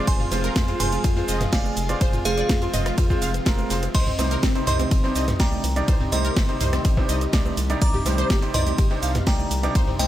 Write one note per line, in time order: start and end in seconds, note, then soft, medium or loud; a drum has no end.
0.00 10.07 C3 medium
0.00 3.91 F3 medium
0.00 0.29 G#3 medium
0.00 3.91 G#3 medium
0.00 0.29 C4 medium
0.00 0.29 F4 medium
0.00 3.91 F4 medium
0.00 0.29 D5 loud
0.07 0.26 F1 loud
0.07 0.15 C5 loud
0.07 0.71 G#5 medium
0.07 0.71 C6 loud
0.07 kick loud
0.07 closed hi-hat medium
0.07 ride medium
0.07 high bongo soft
0.07 shaker soft
0.20 0.27 F4 medium
0.20 mid tom medium
0.32 0.50 F1 medium
0.32 0.65 G#3 medium
0.32 0.65 C4 medium
0.32 0.39 F4 medium
0.32 0.65 F4 medium
0.32 0.65 C5 medium
0.32 snare medium
0.32 closed hi-hat medium
0.32 open hi-hat loud
0.32 high bongo medium
0.32 high conga loud
0.32 shaker medium
0.44 0.51 A#4 loud
0.44 closed hi-hat medium
0.44 shaker soft
0.56 0.74 F2 medium
0.56 0.63 F4 medium
0.56 kick loud
0.56 snare loud
0.56 closed hi-hat medium
0.56 ride medium
0.56 high bongo soft
0.56 shaker soft
0.68 1.14 G#3 medium
0.68 1.14 C4 medium
0.68 1.14 F4 medium
0.68 0.75 F4 medium
0.68 1.14 C5 medium
0.68 closed hi-hat soft
0.80 0.98 F1 medium
0.80 0.87 C5 loud
0.80 1.43 G#5 medium
0.80 1.43 C6 medium
0.80 closed hi-hat medium
0.80 mid tom medium
0.80 open hi-hat loud
0.80 high bongo medium
0.80 shaker medium
0.92 0.99 F4 medium
0.92 closed hi-hat soft
0.92 closed hi-hat medium
0.92 high conga medium
0.92 shaker soft
1.04 1.22 F2 loud
1.04 1.12 F4 medium
1.04 kick loud
1.04 closed hi-hat medium
1.04 ride medium
1.04 shaker soft
1.17 1.36 G#3 medium
1.17 1.36 C4 medium
1.17 1.24 F4 medium
1.17 1.36 F4 medium
1.17 1.36 C5 loud
1.17 closed hi-hat soft
1.17 high bongo soft
1.28 1.47 F1 medium
1.28 1.92 D#5 medium
1.28 snare soft
1.28 closed hi-hat medium
1.28 open hi-hat loud
1.28 shaker medium
1.41 snare soft
1.41 closed hi-hat medium
1.41 mid tom medium
1.41 high bongo medium
1.41 shaker soft
1.52 1.71 F1 loud
1.52 1.72 G#3 loud
1.52 1.72 C4 medium
1.52 1.72 F4 medium
1.52 1.72 D5 loud
1.52 2.16 F5 medium
1.52 2.16 G#5 medium
1.52 kick loud
1.52 snare loud
1.52 closed hi-hat medium
1.52 open hi-hat medium
1.52 ride medium
1.52 shaker soft
1.65 high bongo soft
1.65 high conga loud
1.65 shaker soft
1.77 1.95 F1 loud
1.77 closed hi-hat medium
1.77 open hi-hat loud
1.77 shaker medium
1.89 2.22 G#3 medium
1.89 2.22 C4 medium
1.89 2.22 F4 medium
1.89 2.22 D5 medium
1.89 closed hi-hat medium
1.89 high bongo medium
1.89 shaker soft
2.01 2.19 F1 loud
2.01 2.08 C5 loud
2.01 kick loud
2.01 closed hi-hat medium
2.01 ride medium
2.01 shaker soft
2.13 2.20 F4 medium
2.13 closed hi-hat soft
2.13 mid tom medium
2.13 shaker soft
2.25 2.43 F1 medium
2.25 2.59 G#3 medium
2.25 2.59 C4 medium
2.25 2.33 F4 medium
2.25 2.59 F4 medium
2.25 3.85 G#4 medium
2.25 2.59 C5 medium
2.25 3.85 F5 loud
2.25 closed hi-hat medium
2.25 open hi-hat loud
2.25 high bongo soft
2.25 high conga loud
2.25 shaker medium
2.38 2.45 D5 medium
2.38 closed hi-hat medium
2.38 shaker soft
2.49 2.68 F2 medium
2.49 2.57 F4 medium
2.49 kick loud
2.49 snare soft
2.49 snare loud
2.49 closed hi-hat medium
2.49 ride medium
2.49 high bongo medium
2.49 shaker soft
2.62 3.07 G#3 medium
2.62 3.07 C4 medium
2.62 2.69 F4 medium
2.62 3.07 F4 medium
2.62 3.07 C5 medium
2.62 closed hi-hat soft
2.62 shaker soft
2.73 2.92 F1 medium
2.73 2.81 D#5 loud
2.73 snare medium
2.73 closed hi-hat medium
2.73 mid tom medium
2.73 open hi-hat loud
2.73 high bongo soft
2.73 shaker medium
2.86 2.93 F4 medium
2.86 cross-stick medium
2.86 snare medium
2.86 closed hi-hat medium
2.86 high conga medium
2.86 shaker soft
2.98 3.16 F2 loud
2.98 3.05 F4 medium
2.98 kick loud
2.98 closed hi-hat medium
2.98 ride medium
2.98 high bongo medium
2.98 shaker soft
3.10 3.30 G#3 medium
3.10 3.30 C4 medium
3.10 3.30 F4 medium
3.10 3.17 F4 medium
3.10 3.30 C5 loud
3.10 kick medium
3.10 shaker soft
3.21 3.40 F1 medium
3.21 3.85 F5 medium
3.21 closed hi-hat medium
3.21 open hi-hat loud
3.21 shaker medium
3.34 closed hi-hat medium
3.34 high bongo soft
3.34 shaker soft
3.45 3.64 F1 loud
3.45 3.68 G#3 loud
3.45 3.68 C4 medium
3.45 3.68 F4 medium
3.45 3.68 A#4 loud
3.45 kick loud
3.45 snare loud
3.45 closed hi-hat medium
3.45 ride medium
3.45 shaker soft
3.59 closed hi-hat soft
3.59 high bongo medium
3.59 high conga loud
3.59 shaker soft
3.70 3.88 F1 loud
3.70 3.83 G#3 medium
3.70 3.83 C4 medium
3.70 3.83 F4 medium
3.70 3.83 C5 medium
3.70 snare loud
3.70 closed hi-hat medium
3.70 open hi-hat loud
3.70 shaker medium
3.83 closed hi-hat medium
3.83 closed hi-hat soft
3.83 high bongo soft
3.83 shaker soft
3.95 4.13 C2 loud
3.95 10.07 D#3 medium
3.95 10.07 G3 medium
3.95 4.02 C5 loud
3.95 4.58 D#5 medium
3.95 4.58 C6 loud
3.95 kick loud
3.95 closed hi-hat medium
3.95 closed hi-hat loud
3.95 crash medium
3.95 ride medium
3.95 high bongo soft
3.95 shaker soft
4.07 4.14 C4 medium
4.07 mid tom medium
4.19 4.37 C2 medium
4.19 4.52 C3 medium
4.19 4.52 G3 medium
4.19 4.26 C4 medium
4.19 4.52 C4 medium
4.19 4.52 D#4 medium
4.19 4.52 C5 medium
4.19 snare soft
4.19 closed hi-hat medium
4.19 open hi-hat loud
4.19 high bongo medium
4.19 high conga loud
4.19 shaker medium
4.31 4.38 A#4 loud
4.31 closed hi-hat medium
4.31 shaker soft
4.43 4.61 G1 medium
4.43 4.50 C4 medium
4.43 kick loud
4.43 snare loud
4.43 closed hi-hat loud
4.43 closed hi-hat medium
4.43 ride medium
4.43 shaker soft
4.55 5.01 C3 medium
4.55 5.01 G3 medium
4.55 4.62 C4 medium
4.55 5.01 C4 medium
4.55 5.01 D#4 medium
4.55 5.01 C5 medium
4.55 closed hi-hat soft
4.55 high bongo soft
4.67 4.85 C2 medium
4.67 4.75 C5 loud
4.67 5.30 D#5 medium
4.67 5.30 C6 medium
4.67 closed hi-hat medium
4.67 mid tom medium
4.67 open hi-hat loud
4.67 shaker medium
4.79 4.87 C4 medium
4.79 closed hi-hat medium
4.79 closed hi-hat soft
4.79 high bongo medium
4.79 high conga medium
4.79 shaker soft
4.91 5.09 G1 loud
4.91 4.99 C4 medium
4.91 kick loud
4.91 closed hi-hat medium
4.91 closed hi-hat loud
4.91 ride medium
4.91 shaker soft
5.04 5.23 C3 medium
5.04 5.23 G3 medium
5.04 5.11 C4 medium
5.04 5.23 D4 medium
5.04 5.23 D#4 medium
5.04 5.23 C5 loud
5.04 closed hi-hat soft
5.04 high bongo soft
5.16 5.34 C2 medium
5.16 5.79 D#5 medium
5.16 closed hi-hat medium
5.16 open hi-hat loud
5.16 shaker medium
5.28 snare soft
5.28 closed hi-hat medium
5.28 mid tom medium
5.28 high bongo medium
5.28 shaker soft
5.39 5.58 C2 loud
5.39 5.59 C3 medium
5.39 5.59 G3 medium
5.39 5.59 D4 medium
5.39 5.59 D#4 medium
5.39 5.59 D5 loud
5.39 6.03 G5 medium
5.39 6.03 A#5 medium
5.39 kick loud
5.39 snare loud
5.39 closed hi-hat medium
5.39 open hi-hat medium
5.39 ride medium
5.39 shaker soft
5.52 high conga loud
5.52 shaker soft
5.64 5.82 C2 loud
5.64 closed hi-hat medium
5.64 open hi-hat loud
5.64 high bongo soft
5.64 shaker medium
5.76 6.09 C3 medium
5.76 6.09 G3 medium
5.76 6.09 D4 medium
5.76 6.09 D#4 medium
5.76 6.09 D5 loud
5.76 closed hi-hat medium
5.76 shaker soft
5.88 6.06 C2 loud
5.88 5.95 C5 loud
5.88 kick loud
5.88 closed hi-hat medium
5.88 ride medium
5.88 high bongo medium
5.88 shaker soft
6.00 6.08 C4 medium
6.00 mid tom medium
6.12 6.30 C2 medium
6.12 6.46 C3 medium
6.12 6.46 G3 medium
6.12 6.20 C4 medium
6.12 6.46 C4 medium
6.12 6.46 D#4 medium
6.12 6.46 C5 medium
6.12 7.72 D#5 medium
6.12 7.72 C6 loud
6.12 closed hi-hat medium
6.12 open hi-hat loud
6.12 high bongo soft
6.12 high conga medium
6.12 shaker medium
6.25 6.32 A#4 loud
6.25 closed hi-hat medium
6.25 shaker soft
6.36 6.55 G1 medium
6.36 6.44 C4 medium
6.36 kick loud
6.36 snare loud
6.36 closed hi-hat medium
6.36 ride medium
6.36 high bongo medium
6.36 shaker soft
6.49 6.94 C3 medium
6.49 6.94 G3 medium
6.49 6.56 C4 medium
6.49 6.94 C4 medium
6.49 6.94 D#4 medium
6.49 6.94 C5 medium
6.49 closed hi-hat soft
6.61 6.79 C2 medium
6.61 6.68 C5 loud
6.61 snare medium
6.61 closed hi-hat medium
6.61 mid tom loud
6.61 open hi-hat loud
6.61 shaker medium
6.73 6.80 C4 medium
6.73 cross-stick medium
6.73 snare medium
6.73 closed hi-hat medium
6.73 high bongo soft
6.73 high conga medium
6.73 shaker soft
6.85 7.03 G1 loud
6.85 6.92 C4 medium
6.85 kick loud
6.85 closed hi-hat medium
6.85 closed hi-hat loud
6.85 ride medium
6.85 shaker soft
6.97 7.17 C3 medium
6.97 7.17 G3 medium
6.97 7.04 C4 medium
6.97 7.17 D4 medium
6.97 7.17 D#4 medium
6.97 7.17 C5 loud
6.97 kick medium
6.97 high bongo medium
7.09 7.27 C2 medium
7.09 7.72 D#5 medium
7.09 closed hi-hat medium
7.09 open hi-hat loud
7.09 shaker medium
7.21 closed hi-hat medium
7.21 high bongo soft
7.21 shaker soft
7.32 7.51 C2 loud
7.32 7.53 C3 loud
7.32 7.53 G3 medium
7.32 7.53 D4 medium
7.32 7.53 D#4 medium
7.32 7.53 D5 loud
7.32 kick loud
7.32 snare loud
7.32 closed hi-hat loud
7.32 closed hi-hat medium
7.32 ride medium
7.32 shaker soft
7.46 high bongo medium
7.46 high conga loud
7.46 shaker soft
7.57 7.76 C2 loud
7.57 snare soft
7.57 closed hi-hat medium
7.57 open hi-hat loud
7.57 shaker medium
7.70 8.03 C3 medium
7.70 8.03 G3 medium
7.70 8.03 D4 medium
7.70 8.03 D#4 medium
7.70 8.03 D5 loud
7.70 closed hi-hat medium
7.70 closed hi-hat soft
7.70 shaker soft
7.82 8.00 C2 loud
7.82 7.89 D5 loud
7.82 8.45 A#5 medium
7.82 8.45 D6 loud
7.82 kick loud
7.82 closed hi-hat medium
7.82 ride medium
7.82 high bongo soft
7.82 shaker soft
7.94 8.01 G4 medium
7.94 mid tom medium
8.05 8.24 C2 medium
8.05 8.39 C3 medium
8.05 8.39 G3 medium
8.05 8.39 D4 medium
8.05 8.39 D#4 medium
8.05 8.13 G4 medium
8.05 8.39 C5 medium
8.05 snare soft
8.05 closed hi-hat medium
8.05 open hi-hat loud
8.05 high bongo medium
8.05 high conga medium
8.05 shaker medium
8.18 8.25 C5 loud
8.18 closed hi-hat medium
8.18 shaker soft
8.30 8.48 G1 medium
8.30 8.37 G4 medium
8.30 kick loud
8.30 snare loud
8.30 closed hi-hat medium
8.30 ride medium
8.30 shaker soft
8.42 8.88 C3 medium
8.42 8.88 G3 medium
8.42 8.88 C4 medium
8.42 8.88 D#4 medium
8.42 8.49 G4 medium
8.42 8.88 C5 medium
8.42 closed hi-hat soft
8.54 8.72 C2 medium
8.54 8.62 D5 loud
8.54 9.17 D#5 medium
8.54 9.17 C6 medium
8.54 closed hi-hat medium
8.54 mid tom loud
8.54 open hi-hat loud
8.54 high bongo medium
8.54 shaker medium
8.66 8.74 G4 medium
8.66 closed hi-hat soft
8.66 closed hi-hat medium
8.66 high conga medium
8.66 shaker soft
8.78 8.97 G1 loud
8.78 8.86 G4 medium
8.78 kick loud
8.78 closed hi-hat medium
8.78 ride medium
8.78 shaker soft
8.90 9.10 C3 medium
8.90 9.10 G3 medium
8.90 9.10 D4 medium
8.90 9.10 D#4 medium
8.90 8.98 G4 medium
8.90 9.10 C5 loud
8.90 closed hi-hat soft
8.90 high bongo soft
9.03 9.21 C2 medium
9.03 9.66 F5 medium
9.03 closed hi-hat medium
9.03 open hi-hat loud
9.03 shaker medium
9.15 snare soft
9.15 closed hi-hat medium
9.15 mid tom medium
9.15 high bongo medium
9.15 shaker soft
9.26 9.45 C2 loud
9.26 9.46 C3 medium
9.26 9.46 G3 medium
9.26 9.46 D4 medium
9.26 9.46 D#4 medium
9.26 9.46 D5 loud
9.26 9.90 G5 medium
9.26 9.90 A#5 loud
9.26 kick loud
9.26 snare loud
9.26 closed hi-hat medium
9.26 open hi-hat medium
9.26 ride medium
9.26 shaker soft
9.39 high bongo soft
9.39 high conga medium
9.39 shaker soft
9.51 9.69 C2 loud
9.51 closed hi-hat medium
9.51 open hi-hat loud
9.51 shaker medium
9.63 9.97 C3 medium
9.63 9.97 G3 medium
9.63 9.97 D4 medium
9.63 9.97 D#4 medium
9.63 9.97 D5 loud
9.63 closed hi-hat medium
9.63 high bongo medium
9.63 shaker soft
9.75 9.93 C2 loud
9.75 9.83 C5 loud
9.75 kick loud
9.75 closed hi-hat medium
9.75 ride medium
9.75 shaker soft
9.88 9.95 C4 medium
9.88 mid tom medium
9.99 10.07 C2 medium
9.99 10.07 C3 medium
9.99 10.07 G3 medium
9.99 10.07 C4 medium
9.99 10.07 D#4 medium
9.99 10.07 C5 medium
9.99 10.07 D#5 medium
9.99 10.07 G5 loud
9.99 closed hi-hat medium
9.99 open hi-hat loud
9.99 high bongo soft
9.99 high conga medium
9.99 shaker medium